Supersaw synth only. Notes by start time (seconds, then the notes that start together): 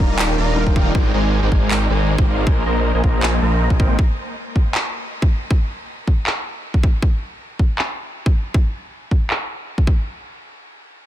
0.00 D#4 A#4 D5 A#5
0.19 D#4 A#4 D5 F5 G5
0.38 D#4 A#4 D5 F5 A#5
0.67 D#4 A#4 D5 G5
0.76 D#4 A#4 D5 F5 G5
0.95 G#3 D#4 A#4 C5 D5
1.14 G#3 D#4 A#4 C5 D5 G#5
1.43 G#3 D#4 A#4 C5 D5 G5
1.52 G#3 D5 G#5
1.71 G#3 D#4 A#4 C5 D5 G5
1.90 G#3 D#4 A#4 C5 D5 G#5
2.18 G#3 D#4 D5 G5
2.28 G#3 D#4 A#4 C5 D5 F5
2.47 A#3 A#4 G#5
2.66 A#3 A#4 C5 D#5 A#5
2.94 A#3 A#4 C5 D#5 G#5
3.04 A#3 A#4 C5 D#5 A#5
3.23 A#3 A#4 C5 D#5 G#5
3.42 A#3 A#4 C5 D#5 A#5
3.70 A#3 D#5 G#5
3.80 A#3 A#4 C5 D#5 G5